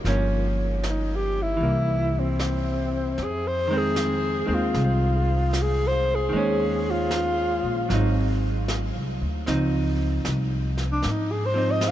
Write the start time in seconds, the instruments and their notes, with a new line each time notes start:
0.04 upright bass G1, hollow-body jazz guitar F3 A#3 C#4, brush sweep, snare
0.83 snare, hi-hat pedal
0.90 alto saxophone D#4
1.15 alto saxophone G4
1.42 alto saxophone E4
1.57 upright bass C2, hollow-body jazz guitar E3
1.61 hollow-body jazz guitar A#3, brush sweep
2.19 alto saxophone C4
2.39 snare, hi-hat pedal
3.18 upright bass F2, brush sweep, snare
3.23 alto saxophone G#4
3.47 alto saxophone C5
3.68 hollow-body jazz guitar D#3 G#3
3.73 hollow-body jazz guitar C4
3.77 alto saxophone G#4
3.96 snare, hi-hat pedal
4.46 upright bass D#2, hollow-body jazz guitar D#3 G#3 C4
4.54 alto saxophone F4
4.74 upright bass C2, brush sweep, snare
5.53 snare, hi-hat pedal
5.62 alto saxophone G#4
5.87 alto saxophone C5
6.15 alto saxophone G#4
6.29 upright bass D#2, hollow-body jazz guitar D#3 G#3, brush sweep
6.36 hollow-body jazz guitar C#4
6.91 alto saxophone F4
7.11 snare, hi-hat pedal
7.63 upright bass A#1
7.89 upright bass G#1, hollow-body jazz guitar F#3 C4, brush sweep, snare
7.94 hollow-body jazz guitar D#4
8.68 snare, hi-hat pedal
8.96 upright bass C2
9.21 upright bass D2
9.46 upright bass C#2, hollow-body jazz guitar F3 C4 D#4, brush sweep, snare
10.25 upright bass C2, snare, hi-hat pedal
10.77 snare
10.92 alto saxophone D4
11.02 upright bass G#2, brush sweep, snare
11.11 alto saxophone D#4
11.31 alto saxophone G#4
11.46 alto saxophone C5
11.54 hollow-body jazz guitar F3 C4 D#4
11.71 alto saxophone D#5
11.81 snare, hi-hat pedal
11.88 alto saxophone F5